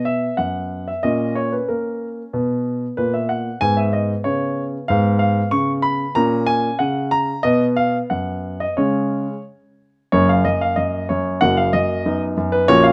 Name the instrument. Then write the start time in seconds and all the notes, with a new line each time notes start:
grand piano
Already playing: B2 B3
0.05 E5
0.37 F#2 F#5
0.88 E5
1.03 A#2 C#4 D#5
1.35 C#5
1.52 B4
1.68 A#3 A#4
2.33 B2 B3
2.97 A#2 B4
3.14 E5
3.29 F#5
3.61 G#2 B3 G#5
3.77 E5
3.93 D#5
4.24 C#3 B3 C#5
4.88 G#2 B3 F5
5.19 F5
5.51 C#3 C#6
5.82 B5
6.15 A#2 C#4 A#5
6.46 G#5
6.79 C#3 F#5
7.11 A#5
7.43 B2 B3 D#5
7.76 F5
8.10 F#2 F#5
8.60 D#5
8.77 C#3 G#3 C#4 C#5
10.12 F#1 F#2 A#3 C#4 C#5
10.29 F5
10.45 F#2 D#5
10.61 F5
10.76 F#2 D#5
11.09 F#2 C#5
11.41 F#1 F#2 A#3 F#4 F#5
11.57 F5
11.73 F#2 D#5
12.05 F#2 B3 D#4
12.37 F#2
12.52 B4
12.68 A#1 A#2 C#4 F#4 C#5
12.84 F5